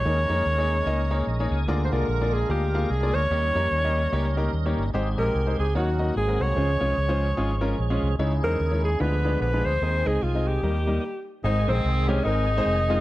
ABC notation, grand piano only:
X:1
M:4/4
L:1/16
Q:"Swing" 1/4=148
K:Ab
V:1 name="Grand piano"
[B,EAd] z [B,EAd]2 z [B,EAd]2 z [B,EAe] z [B,EAd]2 z [B,EAd]2 z | [B,FA=d] z [B,FAd]2 z [B,FAd]2 z [B,FAf] z [B,FAf]2 z [B,FAd]2 z | [B,EGd] z [B,EGd]2 z [B,EGe]2 z [B,EGd] z [B,EGB]2 z [B,EGd]2 z | [A,EGc] z [A,EGe]2 z [A,EGc]2 z [B,E_Gd] z [B,EGe]2 z [A,CGB]2 z |
[A,DFc] z [A,DFd]2 z [A,DFc]2 z [A,DFA] z [A,DFB]2 z [A,DFA]2 z | [A,E_Fd] z [A,EFc]2 z [A,EFd]2 z [A,=D=F=B] z [A,DFB]2 z [A,DFB]2 z | [A,CEc] z [A,CEe]2 z [A,CEe]2 z [G,B,EB] z [G,B,EB]2 z4 | [A,CEc] z [A,CEc]2 z2 [A,CEG] z [A,CEB]2 z [A,CEc]2 z [A,CEF] z |]
V:2 name="Grand piano" clef=bass
E,6 z8 z2 | =D,6 z8 z2 | E,6 z8 z2 | A,,6 z2 E,4 A,,4 |
D,6 z8 z2 | D,6 z2 =D,6 z2 | E,6 z2 E,4 z4 | A,,6 z8 z2 |]